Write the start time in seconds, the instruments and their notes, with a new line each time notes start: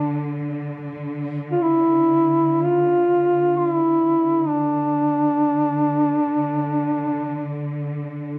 Already playing: cello section D3, duduk D4
1.52 duduk F4
1.62 duduk E4
2.64 duduk F4
3.57 duduk F4
3.70 duduk E4
4.12 cello section D3
4.49 duduk D4
8.35 duduk E4